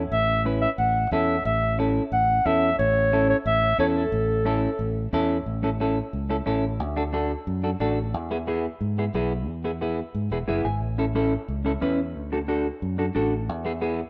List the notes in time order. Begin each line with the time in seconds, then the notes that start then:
0.12 A1 E5
0.45 C#4 E4 B4
0.62 E5
0.78 A1 F#5
1.11 E2 C#4 E4 A4 E5
1.45 A1 E5
1.79 C#4 E4 A4
2.12 A1 F#5
2.46 E2 C#4 E4 A4 E5
2.79 A1 C#5
3.13 C#4 E4 A4
3.30 C#5
3.46 A1 E5
3.78 E2 C#4 E4 A4 C#5
3.97 A4
4.12 A1
4.45 C#4 E4 A4
4.79 A1
5.13 E2 C#4 E4 A4
5.46 A1
5.63 C#4 E4 A4
5.80 C#4 E4 A4
6.13 C#2
6.30 C#4 E4 A4
6.46 A1 C#4 E4 A4
6.80 D2
6.96 D4 F#4 A4
7.13 D4 F#4 A4
7.47 F#2
7.63 D4 F#4 A4
7.80 A1 D4 F#4 A4
8.14 E2
8.31 B3 E4 G#4
8.47 B3 E4 G#4
8.81 G#2
8.98 B3 E4 G#4
9.14 B1 B3 E4 G#4
9.48 E2
9.64 B3 E4 G#4
9.81 B3 E4 G#4
10.15 G#2
10.31 E1 B3 E4 G#4
10.48 F#1 B3 E4 G#4 E5
10.65 G#1 G#5
10.82 A1
10.98 C#4 E4 A4
11.15 C#4 E4 A4
11.48 C#2
11.65 C#4 E4 A4
11.81 E2 C#4 E4 B4
12.15 D2
12.32 D4 F#4 A4
12.48 D4 F#4 A4
12.82 F#2
12.98 D4 F#4 A4
13.15 A1 D4 F#4 A4
13.49 E2
13.65 B3 E4 G#4
13.81 B3 E4 G#4